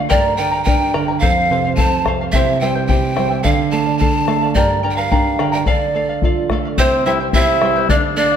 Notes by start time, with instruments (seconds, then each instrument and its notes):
0.09 nylon-string guitar G2, charango G4 A#4 D5 G5 A#5, pan flute D5, bombo low
0.37 nylon-string guitar D3, charango A#4 D5 G5 A#5, pan flute G5
0.52 charango A#4 D5 A#5
0.64 nylon-string guitar D4, charango A#4 D5 G5 A#5, pan flute G5, bombo low
0.93 nylon-string guitar D3, charango A#4 D5 G5 A#5, bombo rim
1.08 charango A#4 D5 A#5
1.19 nylon-string guitar F2, charango A4 C5 F5, pan flute F5, bombo low
1.50 nylon-string guitar C3, charango A4 C5 F5
1.65 charango C5 F5
1.76 nylon-string guitar C4, charango A4 C5 F5, pan flute A5, bombo low
2.06 nylon-string guitar C3, charango A4 C5 F5, bombo rim, bombo low
2.21 charango C5 F5
2.32 nylon-string guitar C3, charango E4 G4 C5 E5 G5, pan flute E5, bombo low
2.60 nylon-string guitar G3, charango E4 C5 E5 G5, pan flute G5
2.75 charango E4 C5 G5
2.87 charango E4 C5 E5 G5, nylon-string guitar G4, pan flute G5, bombo low
3.15 nylon-string guitar G3, charango E4 C5 E5 G5, bombo rim
3.30 charango E4 C5 G5
3.43 nylon-string guitar D3, charango A4 D5 F5, pan flute F5, bombo low
3.71 nylon-string guitar A3, charango A4 D5 F5, pan flute A5
3.86 charango D5 F5
3.98 charango A4 D5 F5, nylon-string guitar A4, pan flute A5, bombo low
4.27 nylon-string guitar A3, charango A4 D5 F5, bombo rim
4.42 charango D5 F5
4.55 nylon-string guitar G2, charango G4 A#4 D5 G5 A#5, pan flute D5, bombo low
4.83 nylon-string guitar D3, charango A#4 D5 G5 A#5
4.90 pan flute G5
4.96 charango A#4 D5 A#5, pan flute F5
5.11 nylon-string guitar D4, charango A#4 D5 G5 A#5, bombo low
5.39 nylon-string guitar D3, charango A#4 D5 G5 A#5, bombo rim
5.52 charango A#4 D5 A#5, pan flute G5
5.66 nylon-string guitar D3, charango A4 D5 F5, pan flute D5, bombo low
5.95 nylon-string guitar A3, charango A4 D5 F5
6.09 charango D5 F5
6.22 nylon-string guitar F4, charango A4 D5 F5, bombo low
6.50 nylon-string guitar A3, charango A4 D5 F5, bombo rim, bombo low
6.65 charango D5 F5
6.78 nylon-string guitar C3, oboe C4, charango E4 G4 C5 E5 G5, pan flute C5, bombo low
7.06 nylon-string guitar G3, oboe E4, charango E4 C5 E5 G5, pan flute E5
7.20 charango E4 C5 G5
7.33 oboe E4, charango E4 C5 E5 G5, nylon-string guitar G4, pan flute E5, bombo low
7.62 nylon-string guitar G3, charango E4 C5 E5 G5, bombo rim
7.76 charango E4 C5 G5
7.89 nylon-string guitar D3, oboe D4, charango A4 D5 F5, pan flute D5, bombo low
8.17 nylon-string guitar A3, oboe D4, charango A4 D5 F5, pan flute D5
8.32 charango D5 F5